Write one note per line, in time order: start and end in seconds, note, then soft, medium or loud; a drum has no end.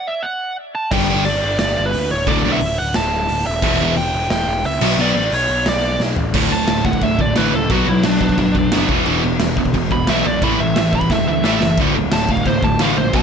0.07 0.25 E5 medium
0.23 0.55 F#5 loud
0.75 0.91 A5 loud
0.91 1.25 G1 medium
0.91 1.06 G2 loud
0.91 1.06 D3 medium
0.91 1.07 G3 loud
0.91 1.23 G5 medium
0.91 kick loud
0.91 crash loud
1.10 1.23 G2 medium
1.10 1.23 D3 medium
1.10 1.24 G3 loud
1.25 1.43 G1 medium
1.25 1.57 D5 medium
1.25 open hi-hat medium
1.44 1.60 G1 medium
1.59 1.77 G1 medium
1.59 1.86 D5 loud
1.59 snare loud
1.59 open hi-hat medium
1.78 1.94 G1 medium
1.86 2.09 B4 medium
1.93 2.11 D2 medium
1.93 open hi-hat medium
2.11 2.27 D1 medium
2.11 2.27 C#5 loud
2.27 2.44 D1 medium
2.27 2.41 D2 loud
2.27 2.42 A2 loud
2.27 2.42 D3 loud
2.27 2.52 D5 medium
2.27 kick loud
2.27 open hi-hat medium
2.45 2.62 B1 medium
2.45 2.58 D2 medium
2.45 2.59 A2 medium
2.45 2.59 D3 medium
2.52 2.79 E5 medium
2.61 2.78 D1 medium
2.61 open hi-hat medium
2.78 2.96 D1 medium
2.78 2.95 F#5 medium
2.94 3.29 D1 loud
2.94 3.46 A5 loud
2.94 snare loud
2.94 open hi-hat medium
3.28 3.46 D1 medium
3.28 open hi-hat medium
3.46 3.62 D#1 medium
3.46 3.94 E5 loud
3.62 3.96 E1 medium
3.62 3.77 E2 medium
3.62 3.77 B2 loud
3.62 3.78 E3 loud
3.62 kick loud
3.62 crash loud
3.81 3.94 E2 medium
3.81 3.95 B2 loud
3.81 3.95 E3 medium
3.97 4.13 E1 medium
3.97 4.30 G5 medium
3.97 open hi-hat medium
4.13 4.29 E1 medium
4.30 4.46 E1 loud
4.30 4.66 G5 loud
4.30 snare loud
4.30 open hi-hat medium
4.47 4.64 E1 medium
4.64 4.80 C#2 medium
4.64 5.00 E5 loud
4.64 open hi-hat medium
4.81 4.97 B1 medium
4.81 4.95 B2 loud
4.81 4.96 F#3 medium
4.81 4.96 B3 loud
4.81 crash medium
4.98 5.14 B1 medium
4.98 5.13 B2 loud
4.98 5.13 F#3 medium
4.98 5.13 B3 loud
4.98 5.34 D5 medium
5.15 5.31 A1 medium
5.32 5.49 B1 medium
5.32 5.65 C#5 medium
5.32 open hi-hat medium
5.49 5.66 B1 medium
5.66 5.99 B1 loud
5.66 5.99 D5 medium
5.66 snare loud
5.66 open hi-hat medium
6.00 6.17 B1 medium
6.00 snare medium
6.16 6.33 A1 medium
6.16 floor tom medium
6.34 6.48 D1 medium
6.34 6.51 D2 medium
6.34 6.51 A2 medium
6.34 6.51 D3 loud
6.34 kick loud
6.34 crash loud
6.34 crash medium
6.51 6.65 D1 medium
6.51 6.67 D2 medium
6.51 6.67 A2 medium
6.51 6.85 A5 loud
6.68 6.82 D1 medium
6.68 6.84 D2 medium
6.68 6.84 A2 medium
6.68 snare loud
6.68 crash medium
6.85 6.98 D1 medium
6.85 7.01 D2 medium
6.85 7.01 A2 medium
6.85 7.03 F#5 medium
6.85 kick medium
6.93 kick medium
7.01 7.16 D1 loud
7.01 7.18 D2 medium
7.01 7.18 A2 medium
7.01 7.19 E5 medium
7.01 kick medium
7.01 crash medium
7.19 7.32 D1 medium
7.19 7.35 D2 medium
7.19 7.35 A2 medium
7.19 7.38 D5 medium
7.19 kick medium
7.36 7.51 A1 medium
7.36 7.53 D2 medium
7.36 7.53 A2 medium
7.36 7.53 D3 medium
7.36 7.54 B4 medium
7.36 snare loud
7.36 crash medium
7.54 7.67 C#2 medium
7.54 7.69 D2 medium
7.54 7.70 A2 medium
7.54 7.71 A4 medium
7.70 7.84 B1 medium
7.70 7.87 B2 medium
7.70 7.87 F#3 loud
7.70 7.88 B3 loud
7.70 7.89 F#4 medium
7.70 kick loud
7.70 crash medium
7.87 8.01 B1 medium
7.87 8.03 B2 medium
7.87 8.03 F#3 medium
7.87 8.04 E4 medium
8.03 8.18 B1 medium
8.03 8.20 B2 medium
8.03 8.20 F#3 medium
8.03 8.20 D4 medium
8.03 snare loud
8.03 crash medium
8.21 8.34 B1 medium
8.21 8.37 B2 medium
8.21 8.37 F#3 medium
8.21 8.87 D4 loud
8.21 kick medium
8.29 kick medium
8.38 8.52 F#1 loud
8.38 8.54 B2 medium
8.38 8.54 F#3 medium
8.38 kick medium
8.38 crash medium
8.55 8.69 E1 medium
8.55 8.71 B2 medium
8.55 8.71 F#3 medium
8.55 kick medium
8.72 8.86 F#1 medium
8.72 8.88 B2 medium
8.72 8.89 F#3 medium
8.72 8.89 B3 medium
8.72 snare loud
8.72 crash medium
8.89 9.03 E1 medium
8.89 9.05 E2 loud
8.89 9.06 B2 loud
8.89 9.06 E3 loud
8.89 kick loud
9.06 9.20 E1 medium
9.06 9.22 E2 loud
9.06 9.23 B2 loud
9.06 9.23 E3 loud
9.06 crash medium
9.23 9.37 E1 medium
9.23 9.39 E2 medium
9.23 9.39 B2 medium
9.40 9.54 E1 medium
9.40 9.56 E2 medium
9.40 9.56 B2 medium
9.40 snare loud
9.40 crash medium
9.57 9.71 E1 medium
9.57 9.73 E2 medium
9.57 9.73 B2 medium
9.57 kick medium
9.65 kick medium
9.74 9.88 E1 loud
9.74 9.90 E2 medium
9.74 9.90 B2 medium
9.74 kick medium
9.74 crash medium
9.91 10.05 E1 medium
9.91 10.07 E2 medium
9.91 10.07 B2 medium
9.91 10.08 B5 loud
9.91 kick medium
10.07 10.22 B1 medium
10.07 10.24 E2 medium
10.07 10.25 B2 medium
10.07 10.25 E3 medium
10.07 10.25 E5 loud
10.07 snare loud
10.07 crash medium
10.26 10.39 B1 medium
10.26 10.41 E2 medium
10.26 10.41 B2 medium
10.26 10.43 D5 loud
10.42 10.56 A1 medium
10.42 10.58 A2 medium
10.42 10.59 E3 medium
10.42 10.59 A3 loud
10.42 10.60 B5 medium
10.42 kick loud
10.42 crash medium
10.60 10.73 A1 medium
10.60 10.75 A2 medium
10.60 10.75 E3 medium
10.60 10.76 E5 medium
10.76 10.90 A1 medium
10.76 10.92 A2 medium
10.76 10.92 E3 medium
10.76 10.94 E5 medium
10.76 snare loud
10.76 crash medium
10.93 11.06 A1 medium
10.93 11.09 A2 medium
10.93 11.09 E3 medium
10.93 11.11 B5 loud
10.93 kick medium
11.01 kick medium
11.10 11.23 E1 loud
11.10 11.26 A2 medium
11.10 11.26 E3 medium
11.10 11.27 E5 loud
11.10 kick medium
11.10 snare medium
11.28 11.41 D2 medium
11.28 11.42 A2 medium
11.28 11.43 E3 medium
11.28 11.43 E5 medium
11.43 11.58 A1 medium
11.43 11.60 A2 medium
11.43 11.60 E3 medium
11.43 11.61 A3 medium
11.43 11.77 E5 loud
11.43 snare medium
11.60 11.75 F#1 medium
11.60 11.76 A2 medium
11.60 11.77 E3 medium
11.60 snare medium
11.77 11.91 D1 medium
11.77 11.94 D2 loud
11.77 11.95 A2 loud
11.77 11.95 D3 loud
11.77 kick loud
11.77 crash medium
11.96 12.09 D1 medium
11.96 12.11 D2 medium
11.96 12.11 A2 medium
12.12 12.26 D1 medium
12.12 12.28 D2 medium
12.12 12.28 A2 medium
12.12 12.29 A5 loud
12.12 snare loud
12.12 crash medium
12.28 12.42 D1 medium
12.28 12.45 D2 medium
12.28 12.45 A2 medium
12.28 12.47 F5 medium
12.28 kick medium
12.37 kick medium
12.45 12.59 D1 loud
12.45 12.61 D2 medium
12.45 12.62 A2 medium
12.45 12.63 C5 medium
12.45 kick medium
12.45 crash medium
12.62 12.76 D1 medium
12.62 12.79 D2 medium
12.62 12.79 A2 medium
12.62 12.80 A5 loud
12.62 kick medium
12.79 12.93 A1 medium
12.79 12.96 D2 medium
12.79 12.96 A2 medium
12.79 12.97 D3 loud
12.79 12.97 F5 loud
12.79 snare loud
12.79 crash medium
12.97 13.10 A#1 medium
12.97 13.12 D2 medium
12.97 13.12 A2 medium
12.97 13.14 C5 loud
13.13 13.23 B1 medium
13.13 13.23 B2 loud
13.13 13.23 F#3 loud
13.13 13.23 B3 loud
13.13 13.23 A5 loud
13.13 kick loud
13.13 crash medium